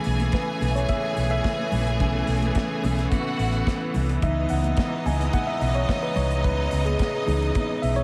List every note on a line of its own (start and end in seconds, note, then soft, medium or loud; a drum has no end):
0.00 4.19 C#3 medium
0.00 1.99 E3 medium
0.00 8.04 E3 medium
0.00 2.00 A3 medium
0.00 4.18 A3 medium
0.00 8.04 B3 medium
0.00 2.01 C#4 medium
0.00 3.07 G#4 medium
0.00 3.07 G#5 medium
0.00 open hi-hat medium
0.06 0.28 B1 medium
0.06 muted conga soft
0.20 closed hi-hat medium
0.20 high conga medium
0.32 0.73 B4 medium
0.32 kick loud
0.32 snare loud
0.32 closed hi-hat medium
0.61 0.83 B1 loud
0.61 open hi-hat medium
0.61 muted conga soft
0.61 high conga medium
0.61 low conga medium
0.71 0.75 E5 medium
0.75 0.88 C#5 loud
0.75 closed hi-hat medium
0.88 1.28 E5 loud
0.88 kick loud
0.88 closed hi-hat medium
0.88 high conga medium
1.16 1.39 B1 medium
1.16 open hi-hat medium
1.30 2.66 E5 loud
1.30 closed hi-hat soft
1.44 kick loud
1.44 snare loud
1.44 closed hi-hat medium
1.44 muted conga soft
1.59 high conga medium
1.72 2.00 A#1 medium
1.72 open hi-hat medium
1.72 muted conga soft
1.72 low conga medium
1.87 closed hi-hat medium
1.99 2.22 B1 medium
1.99 2.79 E3 medium
1.99 2.79 A3 soft
1.99 2.80 C#4 medium
1.99 kick medium
1.99 closed hi-hat medium
1.99 muted conga soft
1.99 low conga medium
2.27 2.50 B1 medium
2.27 open hi-hat medium
2.42 closed hi-hat soft
2.42 high conga medium
2.55 kick loud
2.55 snare loud
2.55 closed hi-hat medium
2.82 3.06 B1 medium
2.82 3.08 E3 soft
2.82 3.08 A3 soft
2.82 3.08 C#4 medium
2.82 open hi-hat medium
2.82 muted conga soft
2.82 high conga medium
2.82 low conga medium
2.99 snare soft
2.99 closed hi-hat medium
3.11 3.93 F#4 medium
3.11 3.93 F#5 medium
3.11 kick loud
3.11 closed hi-hat medium
3.11 muted conga soft
3.11 high conga medium
3.39 3.61 A1 medium
3.39 open hi-hat medium
3.39 muted conga soft
3.52 closed hi-hat soft
3.67 kick loud
3.67 snare loud
3.67 closed hi-hat medium
3.67 muted conga soft
3.81 high conga soft
3.94 4.17 C2 loud
3.94 open hi-hat medium
3.94 low conga medium
4.09 closed hi-hat soft
4.21 4.44 C#2 loud
4.21 8.04 C#3 medium
4.21 6.40 E3 medium
4.21 8.04 G#3 medium
4.21 6.40 B3 medium
4.21 8.04 D#4 medium
4.21 6.41 D#4 medium
4.21 8.04 D#5 loud
4.21 4.49 E5 loud
4.21 kick loud
4.21 closed hi-hat medium
4.21 muted conga soft
4.21 low conga medium
4.49 4.72 C#2 medium
4.49 5.07 F#5 loud
4.49 open hi-hat medium
4.49 muted conga soft
4.64 closed hi-hat soft
4.64 high conga medium
4.77 kick loud
4.77 snare loud
4.77 closed hi-hat medium
5.06 5.28 C#2 medium
5.06 5.34 G#5 medium
5.06 open hi-hat medium
5.06 muted conga soft
5.06 high conga medium
5.06 low conga medium
5.21 snare soft
5.21 closed hi-hat medium
5.33 5.48 F#5 loud
5.33 kick loud
5.33 closed hi-hat medium
5.33 muted conga soft
5.33 high conga medium
5.47 5.76 E5 medium
5.61 5.83 B1 medium
5.61 open hi-hat medium
5.61 muted conga soft
5.74 6.03 C#5 loud
5.74 closed hi-hat soft
5.89 kick loud
5.89 snare loud
5.89 closed hi-hat medium
5.89 muted conga soft
6.03 6.17 B4 medium
6.03 high conga medium
6.16 6.45 C2 loud
6.16 6.45 C#5 medium
6.16 open hi-hat medium
6.16 muted conga soft
6.16 low conga medium
6.31 closed hi-hat medium
6.44 6.66 C#2 loud
6.44 6.83 B4 medium
6.44 kick loud
6.44 closed hi-hat medium
6.44 muted conga soft
6.44 low conga medium
6.71 6.94 C#2 medium
6.71 open hi-hat medium
6.71 muted conga soft
6.85 7.24 G#4 medium
6.85 closed hi-hat medium
6.85 high conga medium
6.99 kick loud
6.99 snare loud
6.99 closed hi-hat medium
6.99 muted conga soft
7.26 7.50 C#2 medium
7.26 8.04 E3 medium
7.26 8.04 B3 soft
7.26 8.04 D#4 soft
7.26 7.53 G#4 medium
7.26 open hi-hat medium
7.26 muted conga soft
7.26 high conga medium
7.26 low conga medium
7.42 closed hi-hat medium
7.55 kick loud
7.55 closed hi-hat medium
7.55 muted conga soft
7.55 high conga medium
7.82 8.04 B1 medium
7.82 7.97 E5 loud
7.82 open hi-hat medium
7.82 muted conga soft
7.96 8.04 C#5 medium
7.96 closed hi-hat soft